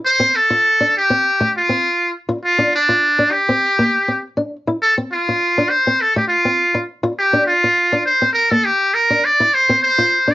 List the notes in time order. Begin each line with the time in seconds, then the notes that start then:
0.05 C5
0.20 C4
0.36 A4
0.50 F4
0.81 D4
0.97 G4
1.10 C4
1.41 A3
1.57 F4
1.69 C4
2.29 F4
2.45 F4
2.58 D4
2.75 D4
2.89 F4
3.19 D4
3.31 G4
3.49 C4
3.79 A#3
4.08 C4
4.37 D4
4.67 E4
4.82 A4
4.98 C4
5.12 F4
5.29 F4
5.58 D4
5.69 C5
5.87 C4
6.01 A4
6.16 A3 G4
6.28 F4
6.45 C4
6.75 muted steel-string acoustic guitar stroke
7.03 F4
7.18 G4
7.33 D4
7.46 F4
7.64 F4
7.92 D4
8.06 C5
8.22 C4
8.33 A#4
8.51 A#3 A4
8.65 G4
8.94 A#4
9.10 D4
9.25 D5
9.40 E4
9.54 C5
9.69 C4
9.83 C5
9.98 F4
10.27 D4 D5